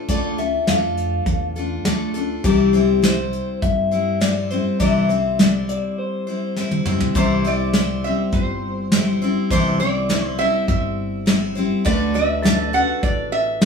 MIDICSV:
0, 0, Header, 1, 7, 480
1, 0, Start_track
1, 0, Tempo, 588235
1, 73, Time_signature, 4, 2, 24, 8
1, 11138, End_track
2, 0, Start_track
2, 0, Title_t, "Clean electric guitar"
2, 0, Program_c, 0, 27
2, 76, Note_on_c, 0, 74, 96
2, 140, Note_off_c, 0, 74, 0
2, 317, Note_on_c, 0, 76, 76
2, 557, Note_off_c, 0, 76, 0
2, 560, Note_on_c, 0, 77, 81
2, 1486, Note_off_c, 0, 77, 0
2, 1998, Note_on_c, 0, 67, 99
2, 2486, Note_on_c, 0, 72, 85
2, 2492, Note_off_c, 0, 67, 0
2, 2953, Note_off_c, 0, 72, 0
2, 2957, Note_on_c, 0, 76, 94
2, 3433, Note_off_c, 0, 76, 0
2, 3436, Note_on_c, 0, 74, 93
2, 3660, Note_off_c, 0, 74, 0
2, 3676, Note_on_c, 0, 72, 82
2, 3912, Note_off_c, 0, 72, 0
2, 3916, Note_on_c, 0, 76, 94
2, 4446, Note_off_c, 0, 76, 0
2, 4446, Note_on_c, 0, 74, 94
2, 4641, Note_off_c, 0, 74, 0
2, 4644, Note_on_c, 0, 74, 79
2, 4864, Note_off_c, 0, 74, 0
2, 4882, Note_on_c, 0, 72, 67
2, 5567, Note_off_c, 0, 72, 0
2, 11138, End_track
3, 0, Start_track
3, 0, Title_t, "Pedal steel guitar"
3, 0, Program_c, 1, 26
3, 5841, Note_on_c, 1, 72, 72
3, 5851, Note_on_c, 1, 76, 69
3, 9641, Note_off_c, 1, 72, 0
3, 9647, Note_off_c, 1, 76, 0
3, 10138, Note_on_c, 1, 69, 72
3, 10148, Note_on_c, 1, 76, 68
3, 10352, Note_off_c, 1, 76, 0
3, 10352, Note_on_c, 1, 74, 68
3, 11138, Note_off_c, 1, 69, 0
3, 11138, Note_off_c, 1, 74, 0
3, 11138, End_track
4, 0, Start_track
4, 0, Title_t, "Resonator guitar played with a steel bar"
4, 0, Program_c, 2, 25
4, 5859, Note_on_c, 2, 72, 81
4, 6072, Note_off_c, 2, 72, 0
4, 6097, Note_on_c, 2, 74, 87
4, 6559, Note_off_c, 2, 74, 0
4, 6563, Note_on_c, 2, 76, 87
4, 6801, Note_on_c, 2, 72, 74
4, 6806, Note_off_c, 2, 76, 0
4, 7485, Note_off_c, 2, 72, 0
4, 7761, Note_on_c, 2, 72, 80
4, 7995, Note_on_c, 2, 74, 96
4, 8005, Note_off_c, 2, 72, 0
4, 8379, Note_off_c, 2, 74, 0
4, 8379, Note_on_c, 2, 72, 96
4, 8472, Note_off_c, 2, 72, 0
4, 8475, Note_on_c, 2, 76, 107
4, 8707, Note_off_c, 2, 76, 0
4, 8717, Note_on_c, 2, 76, 83
4, 9402, Note_off_c, 2, 76, 0
4, 9672, Note_on_c, 2, 74, 99
4, 9915, Note_on_c, 2, 76, 100
4, 9919, Note_off_c, 2, 74, 0
4, 10392, Note_off_c, 2, 76, 0
4, 10396, Note_on_c, 2, 78, 103
4, 10634, Note_on_c, 2, 74, 89
4, 10640, Note_off_c, 2, 78, 0
4, 10855, Note_off_c, 2, 74, 0
4, 10871, Note_on_c, 2, 76, 106
4, 11138, Note_off_c, 2, 76, 0
4, 11138, End_track
5, 0, Start_track
5, 0, Title_t, "Steel-string acoustic guitar"
5, 0, Program_c, 3, 25
5, 70, Note_on_c, 3, 50, 81
5, 75, Note_on_c, 3, 57, 78
5, 76, Note_on_c, 3, 62, 78
5, 86, Note_on_c, 3, 65, 90
5, 87, Note_on_c, 3, 69, 82
5, 302, Note_off_c, 3, 69, 0
5, 312, Note_off_c, 3, 50, 0
5, 312, Note_on_c, 3, 69, 51
5, 314, Note_off_c, 3, 57, 0
5, 315, Note_off_c, 3, 62, 0
5, 317, Note_off_c, 3, 65, 0
5, 327, Note_on_c, 3, 65, 43
5, 339, Note_on_c, 3, 62, 40
5, 552, Note_on_c, 3, 57, 54
5, 553, Note_off_c, 3, 69, 0
5, 554, Note_off_c, 3, 62, 0
5, 561, Note_off_c, 3, 65, 0
5, 563, Note_on_c, 3, 62, 54
5, 574, Note_on_c, 3, 65, 62
5, 580, Note_on_c, 3, 69, 63
5, 1264, Note_off_c, 3, 69, 0
5, 1273, Note_on_c, 3, 69, 52
5, 1274, Note_off_c, 3, 57, 0
5, 1277, Note_off_c, 3, 65, 0
5, 1280, Note_off_c, 3, 62, 0
5, 1287, Note_on_c, 3, 65, 47
5, 1297, Note_on_c, 3, 62, 45
5, 1509, Note_off_c, 3, 62, 0
5, 1510, Note_on_c, 3, 57, 60
5, 1514, Note_off_c, 3, 69, 0
5, 1518, Note_off_c, 3, 65, 0
5, 1519, Note_on_c, 3, 62, 62
5, 1528, Note_on_c, 3, 65, 72
5, 1535, Note_on_c, 3, 69, 65
5, 1737, Note_off_c, 3, 69, 0
5, 1747, Note_on_c, 3, 69, 64
5, 1752, Note_off_c, 3, 65, 0
5, 1753, Note_off_c, 3, 57, 0
5, 1757, Note_off_c, 3, 62, 0
5, 1762, Note_on_c, 3, 65, 55
5, 1774, Note_on_c, 3, 62, 46
5, 1991, Note_off_c, 3, 69, 0
5, 1991, Note_on_c, 3, 48, 86
5, 1996, Note_on_c, 3, 52, 83
5, 1997, Note_off_c, 3, 62, 0
5, 1999, Note_off_c, 3, 65, 0
5, 2000, Note_on_c, 3, 55, 87
5, 2001, Note_on_c, 3, 60, 82
5, 2005, Note_on_c, 3, 64, 81
5, 2011, Note_on_c, 3, 72, 79
5, 2218, Note_off_c, 3, 72, 0
5, 2227, Note_on_c, 3, 72, 60
5, 2229, Note_off_c, 3, 64, 0
5, 2234, Note_off_c, 3, 48, 0
5, 2236, Note_off_c, 3, 52, 0
5, 2238, Note_off_c, 3, 55, 0
5, 2238, Note_on_c, 3, 64, 53
5, 2239, Note_off_c, 3, 60, 0
5, 2247, Note_on_c, 3, 60, 51
5, 2251, Note_on_c, 3, 55, 47
5, 2458, Note_off_c, 3, 55, 0
5, 2468, Note_on_c, 3, 55, 55
5, 2471, Note_off_c, 3, 60, 0
5, 2472, Note_off_c, 3, 72, 0
5, 2477, Note_off_c, 3, 64, 0
5, 2481, Note_on_c, 3, 60, 55
5, 2487, Note_on_c, 3, 64, 59
5, 2495, Note_on_c, 3, 72, 60
5, 3190, Note_off_c, 3, 72, 0
5, 3193, Note_on_c, 3, 72, 48
5, 3196, Note_off_c, 3, 64, 0
5, 3200, Note_on_c, 3, 64, 43
5, 3209, Note_off_c, 3, 60, 0
5, 3212, Note_on_c, 3, 60, 40
5, 3213, Note_off_c, 3, 55, 0
5, 3217, Note_on_c, 3, 55, 41
5, 3422, Note_off_c, 3, 55, 0
5, 3432, Note_on_c, 3, 55, 55
5, 3433, Note_off_c, 3, 60, 0
5, 3435, Note_off_c, 3, 72, 0
5, 3438, Note_off_c, 3, 64, 0
5, 3442, Note_on_c, 3, 60, 61
5, 3449, Note_on_c, 3, 64, 58
5, 3456, Note_on_c, 3, 72, 64
5, 3666, Note_off_c, 3, 72, 0
5, 3675, Note_off_c, 3, 55, 0
5, 3676, Note_off_c, 3, 64, 0
5, 3676, Note_on_c, 3, 72, 52
5, 3680, Note_off_c, 3, 60, 0
5, 3686, Note_on_c, 3, 64, 49
5, 3690, Note_on_c, 3, 60, 47
5, 3703, Note_on_c, 3, 55, 44
5, 3908, Note_off_c, 3, 55, 0
5, 3911, Note_off_c, 3, 60, 0
5, 3914, Note_on_c, 3, 48, 75
5, 3916, Note_off_c, 3, 64, 0
5, 3916, Note_on_c, 3, 52, 77
5, 3917, Note_off_c, 3, 72, 0
5, 3918, Note_on_c, 3, 55, 86
5, 3921, Note_on_c, 3, 60, 88
5, 3925, Note_on_c, 3, 64, 87
5, 3932, Note_on_c, 3, 72, 86
5, 4144, Note_off_c, 3, 72, 0
5, 4154, Note_on_c, 3, 72, 47
5, 4155, Note_off_c, 3, 64, 0
5, 4156, Note_off_c, 3, 48, 0
5, 4157, Note_off_c, 3, 52, 0
5, 4158, Note_off_c, 3, 55, 0
5, 4159, Note_off_c, 3, 60, 0
5, 4165, Note_on_c, 3, 64, 47
5, 4169, Note_on_c, 3, 60, 43
5, 4182, Note_on_c, 3, 55, 41
5, 4389, Note_off_c, 3, 55, 0
5, 4395, Note_off_c, 3, 60, 0
5, 4396, Note_off_c, 3, 72, 0
5, 4398, Note_on_c, 3, 55, 56
5, 4401, Note_off_c, 3, 64, 0
5, 4404, Note_on_c, 3, 60, 65
5, 4412, Note_on_c, 3, 64, 60
5, 4419, Note_on_c, 3, 72, 57
5, 5105, Note_off_c, 3, 72, 0
5, 5115, Note_on_c, 3, 72, 47
5, 5118, Note_off_c, 3, 55, 0
5, 5118, Note_off_c, 3, 64, 0
5, 5121, Note_off_c, 3, 60, 0
5, 5127, Note_on_c, 3, 64, 44
5, 5136, Note_on_c, 3, 60, 37
5, 5141, Note_on_c, 3, 55, 36
5, 5352, Note_off_c, 3, 55, 0
5, 5356, Note_off_c, 3, 72, 0
5, 5359, Note_off_c, 3, 60, 0
5, 5362, Note_off_c, 3, 64, 0
5, 5362, Note_on_c, 3, 55, 54
5, 5369, Note_on_c, 3, 60, 57
5, 5377, Note_on_c, 3, 64, 58
5, 5386, Note_on_c, 3, 72, 56
5, 5595, Note_off_c, 3, 72, 0
5, 5599, Note_off_c, 3, 55, 0
5, 5603, Note_off_c, 3, 60, 0
5, 5603, Note_off_c, 3, 64, 0
5, 5605, Note_on_c, 3, 72, 54
5, 5613, Note_on_c, 3, 64, 52
5, 5625, Note_on_c, 3, 60, 52
5, 5630, Note_on_c, 3, 55, 44
5, 5837, Note_off_c, 3, 55, 0
5, 5838, Note_on_c, 3, 48, 82
5, 5839, Note_off_c, 3, 60, 0
5, 5841, Note_off_c, 3, 72, 0
5, 5842, Note_off_c, 3, 64, 0
5, 5843, Note_on_c, 3, 52, 86
5, 5846, Note_on_c, 3, 55, 86
5, 5849, Note_on_c, 3, 60, 90
5, 5852, Note_on_c, 3, 64, 88
5, 5854, Note_on_c, 3, 72, 93
5, 6064, Note_off_c, 3, 72, 0
5, 6074, Note_on_c, 3, 72, 57
5, 6077, Note_off_c, 3, 48, 0
5, 6078, Note_off_c, 3, 64, 0
5, 6080, Note_off_c, 3, 52, 0
5, 6082, Note_off_c, 3, 55, 0
5, 6083, Note_off_c, 3, 60, 0
5, 6088, Note_on_c, 3, 64, 57
5, 6098, Note_on_c, 3, 60, 46
5, 6104, Note_on_c, 3, 55, 48
5, 6310, Note_off_c, 3, 55, 0
5, 6315, Note_off_c, 3, 72, 0
5, 6320, Note_on_c, 3, 55, 52
5, 6322, Note_off_c, 3, 60, 0
5, 6322, Note_off_c, 3, 64, 0
5, 6332, Note_on_c, 3, 60, 61
5, 6339, Note_on_c, 3, 64, 54
5, 6346, Note_on_c, 3, 72, 60
5, 6556, Note_off_c, 3, 72, 0
5, 6558, Note_off_c, 3, 55, 0
5, 6564, Note_off_c, 3, 60, 0
5, 6564, Note_off_c, 3, 64, 0
5, 6566, Note_on_c, 3, 72, 52
5, 6574, Note_on_c, 3, 64, 44
5, 6584, Note_on_c, 3, 60, 49
5, 6590, Note_on_c, 3, 55, 43
5, 7271, Note_off_c, 3, 55, 0
5, 7279, Note_off_c, 3, 60, 0
5, 7280, Note_off_c, 3, 72, 0
5, 7281, Note_on_c, 3, 55, 58
5, 7285, Note_off_c, 3, 64, 0
5, 7288, Note_on_c, 3, 60, 59
5, 7300, Note_on_c, 3, 64, 67
5, 7304, Note_on_c, 3, 72, 73
5, 7511, Note_off_c, 3, 72, 0
5, 7517, Note_off_c, 3, 64, 0
5, 7518, Note_off_c, 3, 55, 0
5, 7521, Note_on_c, 3, 72, 56
5, 7522, Note_off_c, 3, 60, 0
5, 7527, Note_on_c, 3, 64, 59
5, 7537, Note_on_c, 3, 60, 55
5, 7544, Note_on_c, 3, 55, 49
5, 7758, Note_off_c, 3, 55, 0
5, 7758, Note_off_c, 3, 72, 0
5, 7761, Note_off_c, 3, 64, 0
5, 7761, Note_on_c, 3, 48, 81
5, 7762, Note_off_c, 3, 60, 0
5, 7764, Note_on_c, 3, 52, 90
5, 7768, Note_on_c, 3, 55, 76
5, 7772, Note_on_c, 3, 60, 87
5, 7777, Note_on_c, 3, 64, 92
5, 7777, Note_on_c, 3, 72, 92
5, 7984, Note_off_c, 3, 72, 0
5, 7994, Note_on_c, 3, 72, 55
5, 7998, Note_off_c, 3, 48, 0
5, 7999, Note_off_c, 3, 52, 0
5, 7999, Note_off_c, 3, 64, 0
5, 8001, Note_off_c, 3, 55, 0
5, 8003, Note_off_c, 3, 60, 0
5, 8009, Note_on_c, 3, 64, 55
5, 8013, Note_on_c, 3, 60, 44
5, 8021, Note_on_c, 3, 55, 48
5, 8224, Note_off_c, 3, 55, 0
5, 8234, Note_off_c, 3, 72, 0
5, 8234, Note_on_c, 3, 55, 58
5, 8235, Note_off_c, 3, 60, 0
5, 8242, Note_off_c, 3, 64, 0
5, 8244, Note_on_c, 3, 60, 66
5, 8251, Note_on_c, 3, 64, 66
5, 8258, Note_on_c, 3, 72, 64
5, 8464, Note_off_c, 3, 72, 0
5, 8471, Note_off_c, 3, 64, 0
5, 8474, Note_off_c, 3, 55, 0
5, 8474, Note_on_c, 3, 72, 57
5, 8479, Note_off_c, 3, 60, 0
5, 8481, Note_on_c, 3, 64, 51
5, 8492, Note_on_c, 3, 60, 46
5, 8497, Note_on_c, 3, 55, 40
5, 9177, Note_off_c, 3, 55, 0
5, 9187, Note_on_c, 3, 55, 62
5, 9190, Note_off_c, 3, 60, 0
5, 9193, Note_off_c, 3, 72, 0
5, 9196, Note_off_c, 3, 64, 0
5, 9200, Note_on_c, 3, 60, 64
5, 9208, Note_on_c, 3, 64, 66
5, 9212, Note_on_c, 3, 72, 66
5, 9418, Note_off_c, 3, 72, 0
5, 9427, Note_on_c, 3, 72, 57
5, 9428, Note_off_c, 3, 64, 0
5, 9430, Note_off_c, 3, 55, 0
5, 9436, Note_off_c, 3, 60, 0
5, 9438, Note_on_c, 3, 64, 57
5, 9445, Note_on_c, 3, 60, 59
5, 9450, Note_on_c, 3, 55, 52
5, 9667, Note_on_c, 3, 50, 91
5, 9670, Note_off_c, 3, 72, 0
5, 9672, Note_off_c, 3, 55, 0
5, 9674, Note_off_c, 3, 60, 0
5, 9675, Note_off_c, 3, 64, 0
5, 9675, Note_on_c, 3, 57, 85
5, 9677, Note_on_c, 3, 62, 84
5, 9683, Note_on_c, 3, 66, 94
5, 9685, Note_on_c, 3, 71, 82
5, 9898, Note_off_c, 3, 71, 0
5, 9908, Note_on_c, 3, 71, 61
5, 9909, Note_off_c, 3, 50, 0
5, 9911, Note_off_c, 3, 66, 0
5, 9913, Note_off_c, 3, 57, 0
5, 9914, Note_off_c, 3, 62, 0
5, 9921, Note_on_c, 3, 66, 55
5, 9930, Note_on_c, 3, 62, 46
5, 10144, Note_off_c, 3, 62, 0
5, 10144, Note_on_c, 3, 57, 60
5, 10149, Note_off_c, 3, 71, 0
5, 10153, Note_off_c, 3, 66, 0
5, 10154, Note_on_c, 3, 62, 59
5, 10163, Note_on_c, 3, 66, 59
5, 10170, Note_on_c, 3, 71, 70
5, 10379, Note_off_c, 3, 71, 0
5, 10387, Note_off_c, 3, 57, 0
5, 10389, Note_on_c, 3, 71, 60
5, 10391, Note_off_c, 3, 66, 0
5, 10392, Note_off_c, 3, 62, 0
5, 10401, Note_on_c, 3, 66, 47
5, 10412, Note_on_c, 3, 62, 51
5, 11107, Note_on_c, 3, 57, 61
5, 11115, Note_off_c, 3, 62, 0
5, 11115, Note_off_c, 3, 66, 0
5, 11132, Note_off_c, 3, 71, 0
5, 11138, Note_off_c, 3, 57, 0
5, 11138, End_track
6, 0, Start_track
6, 0, Title_t, "Upright bass"
6, 0, Program_c, 4, 32
6, 72, Note_on_c, 4, 38, 87
6, 459, Note_off_c, 4, 38, 0
6, 551, Note_on_c, 4, 41, 82
6, 961, Note_off_c, 4, 41, 0
6, 1030, Note_on_c, 4, 40, 82
6, 1440, Note_off_c, 4, 40, 0
6, 1512, Note_on_c, 4, 38, 81
6, 1922, Note_off_c, 4, 38, 0
6, 1995, Note_on_c, 4, 36, 85
6, 2767, Note_off_c, 4, 36, 0
6, 2959, Note_on_c, 4, 43, 82
6, 3730, Note_off_c, 4, 43, 0
6, 3917, Note_on_c, 4, 36, 79
6, 4689, Note_off_c, 4, 36, 0
6, 5839, Note_on_c, 4, 36, 88
6, 6609, Note_off_c, 4, 36, 0
6, 6795, Note_on_c, 4, 31, 80
6, 7566, Note_off_c, 4, 31, 0
6, 7759, Note_on_c, 4, 36, 87
6, 8528, Note_off_c, 4, 36, 0
6, 8717, Note_on_c, 4, 31, 85
6, 9486, Note_off_c, 4, 31, 0
6, 9678, Note_on_c, 4, 38, 93
6, 10446, Note_off_c, 4, 38, 0
6, 10633, Note_on_c, 4, 33, 86
6, 11138, Note_off_c, 4, 33, 0
6, 11138, End_track
7, 0, Start_track
7, 0, Title_t, "Drums"
7, 70, Note_on_c, 9, 36, 92
7, 70, Note_on_c, 9, 42, 79
7, 151, Note_off_c, 9, 42, 0
7, 152, Note_off_c, 9, 36, 0
7, 312, Note_on_c, 9, 42, 61
7, 393, Note_off_c, 9, 42, 0
7, 549, Note_on_c, 9, 38, 93
7, 549, Note_on_c, 9, 42, 72
7, 631, Note_off_c, 9, 38, 0
7, 631, Note_off_c, 9, 42, 0
7, 793, Note_on_c, 9, 42, 63
7, 875, Note_off_c, 9, 42, 0
7, 1029, Note_on_c, 9, 42, 78
7, 1030, Note_on_c, 9, 36, 106
7, 1111, Note_off_c, 9, 36, 0
7, 1111, Note_off_c, 9, 42, 0
7, 1270, Note_on_c, 9, 42, 53
7, 1351, Note_off_c, 9, 42, 0
7, 1510, Note_on_c, 9, 38, 101
7, 1510, Note_on_c, 9, 42, 78
7, 1591, Note_off_c, 9, 38, 0
7, 1591, Note_off_c, 9, 42, 0
7, 1752, Note_on_c, 9, 42, 56
7, 1834, Note_off_c, 9, 42, 0
7, 1991, Note_on_c, 9, 42, 79
7, 1992, Note_on_c, 9, 36, 102
7, 2072, Note_off_c, 9, 42, 0
7, 2074, Note_off_c, 9, 36, 0
7, 2233, Note_on_c, 9, 42, 56
7, 2315, Note_off_c, 9, 42, 0
7, 2475, Note_on_c, 9, 38, 93
7, 2475, Note_on_c, 9, 42, 68
7, 2557, Note_off_c, 9, 38, 0
7, 2557, Note_off_c, 9, 42, 0
7, 2716, Note_on_c, 9, 42, 53
7, 2798, Note_off_c, 9, 42, 0
7, 2957, Note_on_c, 9, 36, 108
7, 2957, Note_on_c, 9, 42, 71
7, 3038, Note_off_c, 9, 36, 0
7, 3039, Note_off_c, 9, 42, 0
7, 3199, Note_on_c, 9, 42, 51
7, 3281, Note_off_c, 9, 42, 0
7, 3438, Note_on_c, 9, 38, 110
7, 3438, Note_on_c, 9, 42, 76
7, 3519, Note_off_c, 9, 38, 0
7, 3519, Note_off_c, 9, 42, 0
7, 3678, Note_on_c, 9, 42, 56
7, 3760, Note_off_c, 9, 42, 0
7, 3915, Note_on_c, 9, 42, 82
7, 3918, Note_on_c, 9, 36, 97
7, 3997, Note_off_c, 9, 42, 0
7, 3999, Note_off_c, 9, 36, 0
7, 4160, Note_on_c, 9, 42, 61
7, 4242, Note_off_c, 9, 42, 0
7, 4400, Note_on_c, 9, 38, 88
7, 4400, Note_on_c, 9, 42, 66
7, 4482, Note_off_c, 9, 38, 0
7, 4482, Note_off_c, 9, 42, 0
7, 4641, Note_on_c, 9, 42, 67
7, 4723, Note_off_c, 9, 42, 0
7, 5356, Note_on_c, 9, 38, 60
7, 5438, Note_off_c, 9, 38, 0
7, 5478, Note_on_c, 9, 48, 58
7, 5559, Note_off_c, 9, 48, 0
7, 5594, Note_on_c, 9, 45, 81
7, 5675, Note_off_c, 9, 45, 0
7, 5715, Note_on_c, 9, 43, 73
7, 5797, Note_off_c, 9, 43, 0
7, 5831, Note_on_c, 9, 42, 55
7, 5836, Note_on_c, 9, 36, 107
7, 5912, Note_off_c, 9, 42, 0
7, 5918, Note_off_c, 9, 36, 0
7, 6073, Note_on_c, 9, 42, 60
7, 6155, Note_off_c, 9, 42, 0
7, 6311, Note_on_c, 9, 38, 91
7, 6311, Note_on_c, 9, 42, 56
7, 6392, Note_off_c, 9, 38, 0
7, 6392, Note_off_c, 9, 42, 0
7, 6790, Note_on_c, 9, 42, 56
7, 6795, Note_on_c, 9, 36, 100
7, 6872, Note_off_c, 9, 42, 0
7, 6876, Note_off_c, 9, 36, 0
7, 7276, Note_on_c, 9, 38, 112
7, 7276, Note_on_c, 9, 42, 58
7, 7358, Note_off_c, 9, 38, 0
7, 7358, Note_off_c, 9, 42, 0
7, 7756, Note_on_c, 9, 36, 103
7, 7756, Note_on_c, 9, 42, 62
7, 7837, Note_off_c, 9, 42, 0
7, 7838, Note_off_c, 9, 36, 0
7, 7997, Note_on_c, 9, 42, 64
7, 8078, Note_off_c, 9, 42, 0
7, 8239, Note_on_c, 9, 38, 103
7, 8239, Note_on_c, 9, 42, 60
7, 8320, Note_off_c, 9, 38, 0
7, 8320, Note_off_c, 9, 42, 0
7, 8717, Note_on_c, 9, 36, 106
7, 8718, Note_on_c, 9, 42, 65
7, 8799, Note_off_c, 9, 36, 0
7, 8800, Note_off_c, 9, 42, 0
7, 9197, Note_on_c, 9, 38, 101
7, 9197, Note_on_c, 9, 42, 61
7, 9278, Note_off_c, 9, 38, 0
7, 9278, Note_off_c, 9, 42, 0
7, 9676, Note_on_c, 9, 36, 111
7, 9677, Note_on_c, 9, 42, 58
7, 9757, Note_off_c, 9, 36, 0
7, 9758, Note_off_c, 9, 42, 0
7, 9922, Note_on_c, 9, 42, 59
7, 10003, Note_off_c, 9, 42, 0
7, 10162, Note_on_c, 9, 38, 106
7, 10162, Note_on_c, 9, 42, 59
7, 10243, Note_off_c, 9, 38, 0
7, 10243, Note_off_c, 9, 42, 0
7, 10633, Note_on_c, 9, 36, 116
7, 10633, Note_on_c, 9, 42, 57
7, 10714, Note_off_c, 9, 36, 0
7, 10715, Note_off_c, 9, 42, 0
7, 11110, Note_on_c, 9, 38, 106
7, 11110, Note_on_c, 9, 42, 60
7, 11138, Note_off_c, 9, 38, 0
7, 11138, Note_off_c, 9, 42, 0
7, 11138, End_track
0, 0, End_of_file